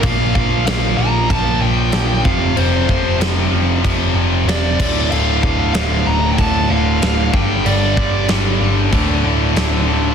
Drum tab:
CC |x-x-x-x-|x-x-x-xx|x-x-x-x-|x-x-x-x-|
SD |--o---o-|--o---o-|--o---o-|--o---o-|
BD |oo--o--o|-o--o--o|-o--o--o|-o--o---|